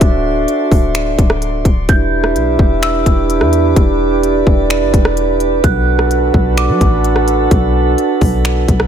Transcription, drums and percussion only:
0, 0, Header, 1, 2, 480
1, 0, Start_track
1, 0, Tempo, 468750
1, 13, Time_signature, 4, 2, 24, 8
1, 9085, End_track
2, 0, Start_track
2, 0, Title_t, "Drums"
2, 11, Note_on_c, 9, 42, 89
2, 12, Note_on_c, 9, 36, 121
2, 113, Note_off_c, 9, 42, 0
2, 115, Note_off_c, 9, 36, 0
2, 492, Note_on_c, 9, 42, 69
2, 595, Note_off_c, 9, 42, 0
2, 731, Note_on_c, 9, 46, 60
2, 733, Note_on_c, 9, 36, 91
2, 834, Note_off_c, 9, 46, 0
2, 835, Note_off_c, 9, 36, 0
2, 970, Note_on_c, 9, 42, 80
2, 972, Note_on_c, 9, 26, 123
2, 1073, Note_off_c, 9, 42, 0
2, 1074, Note_off_c, 9, 26, 0
2, 1214, Note_on_c, 9, 36, 93
2, 1214, Note_on_c, 9, 42, 75
2, 1316, Note_off_c, 9, 36, 0
2, 1317, Note_off_c, 9, 42, 0
2, 1330, Note_on_c, 9, 37, 98
2, 1432, Note_off_c, 9, 37, 0
2, 1454, Note_on_c, 9, 42, 75
2, 1556, Note_off_c, 9, 42, 0
2, 1691, Note_on_c, 9, 36, 95
2, 1692, Note_on_c, 9, 42, 70
2, 1793, Note_off_c, 9, 36, 0
2, 1794, Note_off_c, 9, 42, 0
2, 1933, Note_on_c, 9, 42, 87
2, 1934, Note_on_c, 9, 36, 122
2, 2035, Note_off_c, 9, 42, 0
2, 2036, Note_off_c, 9, 36, 0
2, 2291, Note_on_c, 9, 37, 89
2, 2393, Note_off_c, 9, 37, 0
2, 2415, Note_on_c, 9, 42, 74
2, 2517, Note_off_c, 9, 42, 0
2, 2654, Note_on_c, 9, 36, 95
2, 2756, Note_off_c, 9, 36, 0
2, 2893, Note_on_c, 9, 42, 79
2, 2895, Note_on_c, 9, 26, 125
2, 2995, Note_off_c, 9, 42, 0
2, 2997, Note_off_c, 9, 26, 0
2, 3135, Note_on_c, 9, 36, 93
2, 3136, Note_on_c, 9, 42, 76
2, 3237, Note_off_c, 9, 36, 0
2, 3239, Note_off_c, 9, 42, 0
2, 3376, Note_on_c, 9, 42, 76
2, 3478, Note_off_c, 9, 42, 0
2, 3492, Note_on_c, 9, 37, 84
2, 3595, Note_off_c, 9, 37, 0
2, 3613, Note_on_c, 9, 42, 71
2, 3715, Note_off_c, 9, 42, 0
2, 3855, Note_on_c, 9, 36, 120
2, 3855, Note_on_c, 9, 42, 88
2, 3957, Note_off_c, 9, 36, 0
2, 3957, Note_off_c, 9, 42, 0
2, 4336, Note_on_c, 9, 42, 69
2, 4439, Note_off_c, 9, 42, 0
2, 4574, Note_on_c, 9, 36, 92
2, 4677, Note_off_c, 9, 36, 0
2, 4814, Note_on_c, 9, 42, 78
2, 4816, Note_on_c, 9, 26, 123
2, 4916, Note_off_c, 9, 42, 0
2, 4918, Note_off_c, 9, 26, 0
2, 5055, Note_on_c, 9, 36, 95
2, 5056, Note_on_c, 9, 42, 75
2, 5157, Note_off_c, 9, 36, 0
2, 5159, Note_off_c, 9, 42, 0
2, 5172, Note_on_c, 9, 37, 100
2, 5274, Note_off_c, 9, 37, 0
2, 5294, Note_on_c, 9, 42, 75
2, 5397, Note_off_c, 9, 42, 0
2, 5532, Note_on_c, 9, 42, 70
2, 5635, Note_off_c, 9, 42, 0
2, 5774, Note_on_c, 9, 36, 121
2, 5774, Note_on_c, 9, 42, 84
2, 5876, Note_off_c, 9, 36, 0
2, 5876, Note_off_c, 9, 42, 0
2, 6133, Note_on_c, 9, 37, 89
2, 6235, Note_off_c, 9, 37, 0
2, 6255, Note_on_c, 9, 42, 73
2, 6357, Note_off_c, 9, 42, 0
2, 6493, Note_on_c, 9, 36, 92
2, 6596, Note_off_c, 9, 36, 0
2, 6732, Note_on_c, 9, 42, 83
2, 6734, Note_on_c, 9, 26, 121
2, 6834, Note_off_c, 9, 42, 0
2, 6836, Note_off_c, 9, 26, 0
2, 6973, Note_on_c, 9, 42, 72
2, 6974, Note_on_c, 9, 36, 93
2, 7076, Note_off_c, 9, 36, 0
2, 7076, Note_off_c, 9, 42, 0
2, 7213, Note_on_c, 9, 42, 72
2, 7316, Note_off_c, 9, 42, 0
2, 7329, Note_on_c, 9, 37, 86
2, 7432, Note_off_c, 9, 37, 0
2, 7451, Note_on_c, 9, 42, 72
2, 7554, Note_off_c, 9, 42, 0
2, 7692, Note_on_c, 9, 42, 86
2, 7693, Note_on_c, 9, 36, 123
2, 7795, Note_off_c, 9, 42, 0
2, 7796, Note_off_c, 9, 36, 0
2, 8173, Note_on_c, 9, 42, 73
2, 8276, Note_off_c, 9, 42, 0
2, 8410, Note_on_c, 9, 46, 64
2, 8412, Note_on_c, 9, 36, 93
2, 8512, Note_off_c, 9, 46, 0
2, 8515, Note_off_c, 9, 36, 0
2, 8650, Note_on_c, 9, 42, 78
2, 8652, Note_on_c, 9, 26, 124
2, 8753, Note_off_c, 9, 42, 0
2, 8754, Note_off_c, 9, 26, 0
2, 8893, Note_on_c, 9, 36, 93
2, 8893, Note_on_c, 9, 42, 77
2, 8995, Note_off_c, 9, 36, 0
2, 8995, Note_off_c, 9, 42, 0
2, 9008, Note_on_c, 9, 37, 99
2, 9085, Note_off_c, 9, 37, 0
2, 9085, End_track
0, 0, End_of_file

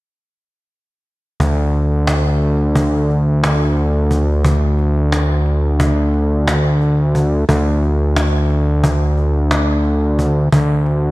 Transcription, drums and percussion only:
0, 0, Header, 1, 2, 480
1, 0, Start_track
1, 0, Tempo, 676437
1, 995, Time_signature, 9, 3, 24, 8
1, 7884, End_track
2, 0, Start_track
2, 0, Title_t, "Cajon"
2, 994, Note_on_c, 9, 36, 79
2, 1065, Note_off_c, 9, 36, 0
2, 1234, Note_on_c, 9, 38, 25
2, 1305, Note_off_c, 9, 38, 0
2, 1472, Note_on_c, 9, 38, 72
2, 1543, Note_off_c, 9, 38, 0
2, 1717, Note_on_c, 9, 38, 25
2, 1788, Note_off_c, 9, 38, 0
2, 1955, Note_on_c, 9, 36, 77
2, 2026, Note_off_c, 9, 36, 0
2, 2198, Note_on_c, 9, 38, 25
2, 2269, Note_off_c, 9, 38, 0
2, 2438, Note_on_c, 9, 38, 77
2, 2509, Note_off_c, 9, 38, 0
2, 2676, Note_on_c, 9, 38, 27
2, 2747, Note_off_c, 9, 38, 0
2, 2915, Note_on_c, 9, 36, 49
2, 2986, Note_off_c, 9, 36, 0
2, 3155, Note_on_c, 9, 36, 82
2, 3225, Note_off_c, 9, 36, 0
2, 3399, Note_on_c, 9, 38, 24
2, 3470, Note_off_c, 9, 38, 0
2, 3636, Note_on_c, 9, 38, 78
2, 3707, Note_off_c, 9, 38, 0
2, 3875, Note_on_c, 9, 38, 22
2, 3946, Note_off_c, 9, 38, 0
2, 4114, Note_on_c, 9, 36, 84
2, 4185, Note_off_c, 9, 36, 0
2, 4356, Note_on_c, 9, 38, 22
2, 4427, Note_off_c, 9, 38, 0
2, 4595, Note_on_c, 9, 38, 82
2, 4666, Note_off_c, 9, 38, 0
2, 4836, Note_on_c, 9, 38, 27
2, 4907, Note_off_c, 9, 38, 0
2, 5073, Note_on_c, 9, 36, 50
2, 5144, Note_off_c, 9, 36, 0
2, 5313, Note_on_c, 9, 36, 84
2, 5384, Note_off_c, 9, 36, 0
2, 5555, Note_on_c, 9, 38, 25
2, 5626, Note_off_c, 9, 38, 0
2, 5794, Note_on_c, 9, 38, 78
2, 5865, Note_off_c, 9, 38, 0
2, 6034, Note_on_c, 9, 38, 25
2, 6105, Note_off_c, 9, 38, 0
2, 6270, Note_on_c, 9, 36, 82
2, 6341, Note_off_c, 9, 36, 0
2, 6511, Note_on_c, 9, 38, 27
2, 6582, Note_off_c, 9, 38, 0
2, 6748, Note_on_c, 9, 38, 79
2, 6819, Note_off_c, 9, 38, 0
2, 6989, Note_on_c, 9, 38, 28
2, 7060, Note_off_c, 9, 38, 0
2, 7229, Note_on_c, 9, 36, 54
2, 7300, Note_off_c, 9, 36, 0
2, 7468, Note_on_c, 9, 36, 88
2, 7539, Note_off_c, 9, 36, 0
2, 7708, Note_on_c, 9, 38, 25
2, 7779, Note_off_c, 9, 38, 0
2, 7884, End_track
0, 0, End_of_file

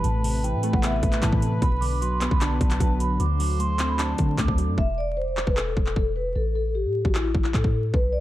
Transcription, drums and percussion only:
0, 0, Header, 1, 2, 480
1, 0, Start_track
1, 0, Tempo, 394737
1, 51, Time_signature, 4, 2, 24, 8
1, 9975, End_track
2, 0, Start_track
2, 0, Title_t, "Drums"
2, 50, Note_on_c, 9, 42, 70
2, 172, Note_off_c, 9, 42, 0
2, 294, Note_on_c, 9, 46, 88
2, 416, Note_off_c, 9, 46, 0
2, 538, Note_on_c, 9, 42, 73
2, 659, Note_off_c, 9, 42, 0
2, 767, Note_on_c, 9, 42, 84
2, 888, Note_off_c, 9, 42, 0
2, 892, Note_on_c, 9, 36, 97
2, 1012, Note_on_c, 9, 39, 118
2, 1013, Note_off_c, 9, 36, 0
2, 1013, Note_on_c, 9, 42, 91
2, 1133, Note_off_c, 9, 39, 0
2, 1135, Note_off_c, 9, 42, 0
2, 1251, Note_on_c, 9, 36, 100
2, 1251, Note_on_c, 9, 42, 76
2, 1370, Note_off_c, 9, 42, 0
2, 1370, Note_on_c, 9, 39, 70
2, 1370, Note_on_c, 9, 42, 47
2, 1373, Note_off_c, 9, 36, 0
2, 1490, Note_on_c, 9, 36, 96
2, 1491, Note_off_c, 9, 39, 0
2, 1491, Note_on_c, 9, 39, 101
2, 1492, Note_off_c, 9, 42, 0
2, 1492, Note_on_c, 9, 42, 88
2, 1611, Note_off_c, 9, 36, 0
2, 1611, Note_on_c, 9, 36, 96
2, 1612, Note_off_c, 9, 39, 0
2, 1614, Note_off_c, 9, 42, 0
2, 1731, Note_on_c, 9, 42, 78
2, 1733, Note_off_c, 9, 36, 0
2, 1853, Note_off_c, 9, 42, 0
2, 1971, Note_on_c, 9, 36, 106
2, 1971, Note_on_c, 9, 42, 68
2, 2092, Note_off_c, 9, 36, 0
2, 2092, Note_off_c, 9, 42, 0
2, 2214, Note_on_c, 9, 46, 83
2, 2336, Note_off_c, 9, 46, 0
2, 2458, Note_on_c, 9, 42, 74
2, 2579, Note_off_c, 9, 42, 0
2, 2686, Note_on_c, 9, 42, 86
2, 2691, Note_on_c, 9, 39, 101
2, 2808, Note_off_c, 9, 42, 0
2, 2812, Note_off_c, 9, 39, 0
2, 2812, Note_on_c, 9, 36, 101
2, 2932, Note_on_c, 9, 39, 115
2, 2933, Note_off_c, 9, 36, 0
2, 2933, Note_on_c, 9, 42, 93
2, 3053, Note_off_c, 9, 39, 0
2, 3055, Note_off_c, 9, 42, 0
2, 3171, Note_on_c, 9, 36, 98
2, 3171, Note_on_c, 9, 42, 76
2, 3291, Note_off_c, 9, 42, 0
2, 3291, Note_on_c, 9, 39, 71
2, 3291, Note_on_c, 9, 42, 48
2, 3293, Note_off_c, 9, 36, 0
2, 3410, Note_on_c, 9, 36, 92
2, 3412, Note_off_c, 9, 39, 0
2, 3412, Note_off_c, 9, 42, 0
2, 3412, Note_on_c, 9, 42, 90
2, 3531, Note_off_c, 9, 36, 0
2, 3533, Note_off_c, 9, 42, 0
2, 3652, Note_on_c, 9, 42, 79
2, 3773, Note_off_c, 9, 42, 0
2, 3891, Note_on_c, 9, 42, 69
2, 4012, Note_off_c, 9, 42, 0
2, 4134, Note_on_c, 9, 46, 87
2, 4256, Note_off_c, 9, 46, 0
2, 4377, Note_on_c, 9, 42, 74
2, 4499, Note_off_c, 9, 42, 0
2, 4606, Note_on_c, 9, 42, 85
2, 4610, Note_on_c, 9, 39, 102
2, 4727, Note_off_c, 9, 42, 0
2, 4732, Note_off_c, 9, 39, 0
2, 4851, Note_on_c, 9, 39, 119
2, 4853, Note_on_c, 9, 42, 92
2, 4973, Note_off_c, 9, 39, 0
2, 4974, Note_off_c, 9, 42, 0
2, 5085, Note_on_c, 9, 42, 78
2, 5091, Note_on_c, 9, 36, 97
2, 5207, Note_off_c, 9, 42, 0
2, 5213, Note_off_c, 9, 36, 0
2, 5329, Note_on_c, 9, 36, 94
2, 5330, Note_on_c, 9, 39, 101
2, 5331, Note_on_c, 9, 42, 91
2, 5451, Note_off_c, 9, 36, 0
2, 5451, Note_on_c, 9, 36, 93
2, 5452, Note_off_c, 9, 39, 0
2, 5453, Note_off_c, 9, 42, 0
2, 5571, Note_on_c, 9, 42, 78
2, 5573, Note_off_c, 9, 36, 0
2, 5693, Note_off_c, 9, 42, 0
2, 5810, Note_on_c, 9, 36, 108
2, 5932, Note_off_c, 9, 36, 0
2, 6531, Note_on_c, 9, 39, 98
2, 6652, Note_on_c, 9, 36, 97
2, 6653, Note_off_c, 9, 39, 0
2, 6772, Note_on_c, 9, 39, 114
2, 6774, Note_off_c, 9, 36, 0
2, 6894, Note_off_c, 9, 39, 0
2, 7012, Note_on_c, 9, 36, 95
2, 7131, Note_on_c, 9, 39, 69
2, 7133, Note_off_c, 9, 36, 0
2, 7250, Note_on_c, 9, 36, 91
2, 7253, Note_off_c, 9, 39, 0
2, 7372, Note_off_c, 9, 36, 0
2, 8572, Note_on_c, 9, 36, 98
2, 8692, Note_on_c, 9, 39, 118
2, 8694, Note_off_c, 9, 36, 0
2, 8813, Note_off_c, 9, 39, 0
2, 8932, Note_on_c, 9, 36, 94
2, 9051, Note_on_c, 9, 39, 67
2, 9053, Note_off_c, 9, 36, 0
2, 9170, Note_on_c, 9, 36, 88
2, 9171, Note_off_c, 9, 39, 0
2, 9171, Note_on_c, 9, 39, 99
2, 9291, Note_off_c, 9, 36, 0
2, 9292, Note_off_c, 9, 39, 0
2, 9292, Note_on_c, 9, 36, 96
2, 9413, Note_off_c, 9, 36, 0
2, 9651, Note_on_c, 9, 36, 111
2, 9773, Note_off_c, 9, 36, 0
2, 9975, End_track
0, 0, End_of_file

